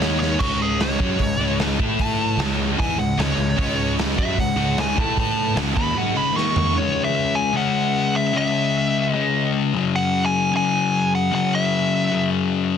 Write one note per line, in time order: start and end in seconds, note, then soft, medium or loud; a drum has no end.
0.00 0.36 D#2 loud
0.00 0.39 D#3 medium
0.00 0.39 A#3 medium
0.00 0.39 D#4 loud
0.00 0.19 C#5 medium
0.00 snare medium
0.00 open hi-hat medium
0.20 0.39 C#5 medium
0.20 snare medium
0.37 0.95 C#2 medium
0.37 0.98 C#3 medium
0.37 0.99 G#3 medium
0.37 1.77 C#4 medium
0.37 0.99 C#4 loud
0.37 0.59 F#4 medium
0.37 1.76 G#4 medium
0.37 1.77 D#5 medium
0.37 kick loud
0.37 crash loud
0.62 0.80 G#4 medium
0.80 1.57 C#5 medium
0.80 snare loud
0.80 open hi-hat medium
0.91 snare soft
0.99 1.18 F#2 medium
0.99 1.18 F#3 medium
0.99 1.18 C#4 medium
0.99 1.19 F#4 medium
0.99 kick loud
1.19 1.37 C#2 medium
1.19 1.35 C#3 medium
1.19 1.35 G#3 medium
1.19 kick medium
1.19 open hi-hat soft
1.38 1.76 C#2 medium
1.38 1.79 C#3 medium
1.38 1.78 G#3 loud
1.38 1.79 C#4 medium
1.59 snare loud
1.59 open hi-hat soft
1.78 2.34 A2 medium
1.78 2.38 A3 medium
1.78 2.37 E4 medium
1.78 2.38 E4 medium
1.78 2.38 A4 loud
1.78 2.38 B4 medium
1.78 kick loud
1.99 2.38 A5 loud
1.99 kick loud
1.99 open hi-hat medium
2.37 2.75 C#2 loud
2.37 2.77 C#3 medium
2.37 2.78 G#3 loud
2.37 2.78 C#4 loud
2.37 4.95 C#4 medium
2.37 4.95 G#4 medium
2.37 4.94 D#5 medium
2.37 snare loud
2.37 open hi-hat medium
2.51 snare soft
2.78 2.97 E2 medium
2.78 2.97 E3 medium
2.78 2.97 B3 medium
2.78 2.98 E4 loud
2.78 2.98 G#5 loud
2.78 kick loud
2.78 open hi-hat medium
2.97 3.16 C#2 medium
2.97 3.14 C#3 medium
2.97 3.14 G#3 medium
2.97 3.18 F#5 medium
3.17 3.36 C#2 loud
3.17 3.36 C#3 medium
3.17 3.37 G#3 loud
3.17 3.38 C#4 medium
3.17 3.96 C#5 loud
3.17 snare loud
3.17 open hi-hat medium
3.37 3.56 C#2 medium
3.37 3.54 C#3 medium
3.37 3.54 G#3 medium
3.57 4.14 C#2 medium
3.57 4.16 C#3 medium
3.57 4.16 G#3 loud
3.57 4.15 C#4 loud
3.57 kick loud
3.57 open hi-hat medium
3.99 snare loud
3.99 open hi-hat medium
4.10 snare soft
4.16 4.36 F#2 loud
4.16 4.36 F#3 loud
4.16 4.36 C#4 medium
4.16 4.36 F#4 loud
4.16 4.37 E5 loud
4.16 kick medium
4.36 4.55 C#2 medium
4.36 4.53 C#3 medium
4.36 4.53 G#3 medium
4.36 4.77 F#5 loud
4.36 kick medium
4.36 open hi-hat medium
4.56 4.94 C#2 loud
4.56 4.96 C#3 medium
4.56 4.96 G#3 loud
4.56 4.96 C#4 medium
4.78 4.98 G#5 medium
4.78 snare loud
4.78 open hi-hat medium
4.96 5.53 A2 medium
4.96 5.55 A3 medium
4.96 5.57 A3 medium
4.96 5.55 E4 medium
4.96 5.57 E4 medium
4.96 5.56 A4 loud
4.96 kick loud
5.00 5.57 B4 medium
5.00 5.18 A5 medium
5.17 5.57 A5 loud
5.17 kick loud
5.17 open hi-hat medium
5.54 5.74 C#2 medium
5.54 5.73 C#3 loud
5.54 5.74 G#3 medium
5.54 5.75 C#4 loud
5.54 6.35 C#4 medium
5.54 6.35 G#4 medium
5.54 6.35 D#5 medium
5.54 snare loud
5.54 open hi-hat medium
5.74 5.95 D#2 medium
5.74 5.94 D#3 medium
5.74 5.95 A#3 medium
5.74 5.95 D#4 medium
5.74 5.96 B5 loud
5.74 kick loud
5.94 6.14 F#3 medium
5.94 6.14 C#4 loud
5.94 6.14 F#4 loud
5.94 6.16 F#5 loud
6.14 6.33 C#3 medium
6.14 6.33 G#3 loud
6.14 6.33 C#4 loud
6.14 6.36 B5 medium
6.33 6.73 D#3 medium
6.33 6.74 A#3 medium
6.33 6.74 D#4 medium
6.33 6.76 D#4 medium
6.33 6.75 A#4 medium
6.33 6.56 C#6 loud
6.38 6.76 D#5 medium
6.38 snare medium
6.56 6.76 C#6 medium
6.56 floor tom medium
6.74 7.51 C#3 loud
6.74 7.54 G#3 loud
6.74 7.55 C#4 loud
6.74 12.78 C#4 medium
6.74 12.78 G#4 medium
6.74 7.04 C#5 loud
6.74 9.70 E5 medium
7.04 7.36 E5 medium
7.35 7.54 G#5 loud
7.53 8.32 C#3 medium
7.53 8.33 G#3 medium
7.53 8.35 C#4 medium
7.57 8.17 F#5 loud
8.16 8.36 E5 medium
8.33 9.12 C#3 loud
8.33 9.13 G#3 loud
8.33 9.15 C#4 loud
8.37 9.12 E5 medium
9.12 9.72 C#3 medium
9.12 9.73 G#3 medium
9.12 12.66 C#4 medium
9.12 9.51 D#5 medium
9.73 10.54 F#2 loud
9.73 10.52 C#3 loud
9.73 12.78 F#3 medium
9.73 10.51 F#3 loud
9.96 10.22 F#5 loud
10.26 10.52 G#5 loud
10.52 11.30 F#2 medium
10.52 11.31 C#3 medium
10.52 11.31 F#3 medium
10.57 11.15 G#5 loud
11.15 11.32 F#5 medium
11.31 12.10 F#2 loud
11.31 12.11 C#3 medium
11.31 12.10 F#3 loud
11.31 11.52 F#5 medium
11.55 12.29 E5 medium
12.11 12.78 F#2 medium
12.11 12.78 C#3 medium
12.11 12.78 F#3 medium